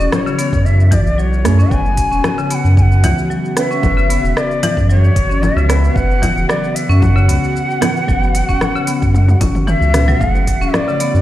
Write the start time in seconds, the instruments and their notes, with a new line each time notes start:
Already playing: synth stab C#3 A3 C#4 E4 G#4, analog synth pad E3 F#3 F#4, ney D5
0.00 marimba C#4, shaker
0.12 ney C#5, cross-stick, low conga, shaker
0.26 marimba C#3, shaker
0.38 marimba B3, closed hi-hat, shaker
0.53 analog synth bass F#2, kick, shaker
0.65 analog synth bass F#2, ney E5, shaker
0.80 shaker
0.91 marimba E3, ney D5, kick, closed hi-hat, low conga, shaker
1.06 analog synth bass B1, shaker
1.18 marimba F#3, ney C#5, shaker
1.33 shaker
1.44 analog synth bass F#2, synth stab A3 C#4 E4 G#4, cross-stick, closed hi-hat, shaker
1.59 marimba C#4, shaker
1.70 analog synth bass F#1, analog synth pad C#3 B3 F#4, marimba F#3, synth stab B3 C#4 F#4 B4, ney G#5, kick, shaker
1.86 shaker
1.97 kick, closed hi-hat, shaker
2.11 analog synth bass E1, marimba C#4, shaker
2.24 cross-stick, low conga, shaker
2.38 marimba C#3, shaker
2.50 marimba B3, ney F#5 G#5, closed hi-hat, shaker
2.65 analog synth bass F#2, shaker
2.77 ney G#5, kick, shaker
2.82 ney F#5
2.92 shaker
3.04 analog synth bass C#2, marimba E3, closed hi-hat, low conga, shaker
3.18 shaker
3.30 marimba F#3, shaker
3.45 shaker
3.57 synth stab B3 C#4 F#4 B4, ney E5, cross-stick, closed hi-hat, shaker
3.71 marimba C#4, shaker
3.82 analog synth bass F#1, synth stab C#3 B3 F#4, kick, low conga, shaker
3.86 synth stab B4
3.97 marimba C#3, shaker
4.10 marimba B3, closed hi-hat, shaker
4.24 analog synth bass E1, shaker
4.37 ney D5, cross-stick, shaker
4.51 shaker
4.63 marimba E3, closed hi-hat, low conga, shaker
4.77 analog synth bass F#2, kick, shaker
4.90 marimba F#3, ney C#5, shaker
5.04 shaker
5.16 analog synth bass F#1, kick, closed hi-hat, shaker
5.29 marimba C#4, shaker
5.43 ney E5, low conga, shaker
5.56 analog synth bass C#2, marimba C#3, shaker
5.68 synth stab B3 C#4 F#4 B4, marimba B3, cross-stick, closed hi-hat, shaker
5.84 shaker
5.93 analog synth bass F#1, synth stab B3 C#4 F#4 B4, ney F#5, kick, shaker
6.11 shaker
6.22 marimba E3, kick, closed hi-hat, low conga, shaker
6.36 analog synth bass E1, shaker
6.49 marimba F#3, ney D5, cross-stick, shaker
6.64 shaker
6.75 ney E5, closed hi-hat, shaker
6.89 analog synth bass F#2, marimba C#4, shaker
7.01 ney F#5, kick, low conga, shaker
7.16 marimba C#3, shaker
7.28 analog synth bass C#2, marimba B3, closed hi-hat, shaker
7.44 shaker
7.56 shaker
7.70 shaker
7.81 marimba E3, synth stab B3 C#4 F#4 B4, cross-stick, closed hi-hat, low conga, shaker
7.97 shaker
8.07 analog synth bass F#1, marimba F#3, synth stab B3 C#4 F#4 B4, kick, shaker
8.23 shaker
8.35 closed hi-hat, shaker
8.49 analog synth bass E1, marimba C#4, kick, shaker
8.61 cross-stick, low conga, shaker
8.75 marimba C#3, shaker
8.87 marimba B3, closed hi-hat, shaker
9.02 analog synth bass F#2, kick, shaker
9.14 high tom, shaker
9.28 high tom, shaker
9.41 analog synth bass F#1, marimba C#4, kick, closed hi-hat, low conga, shaker
9.55 mid tom, shaker
9.67 marimba E3, ney E5, mid tom, shaker
9.81 analog synth bass C#2, shaker
9.93 synth stab B3 C#4 F#4 B4, cross-stick, closed hi-hat, mid tom, shaker
10.08 marimba F#3, mid tom, shaker
10.19 analog synth bass F#1, synth stab C#3 A3 E4, analog synth pad E3 A3 F#4, marimba F#3, ney F#5, kick, shaker
10.23 synth stab G#4
10.35 shaker
10.47 kick, closed hi-hat, shaker
10.61 analog synth bass E1, marimba C#4, shaker
10.74 ney D5, cross-stick, low conga, shaker
10.88 marimba C#3, shaker
11.00 marimba B3, closed hi-hat, shaker
11.15 analog synth bass F#2, shaker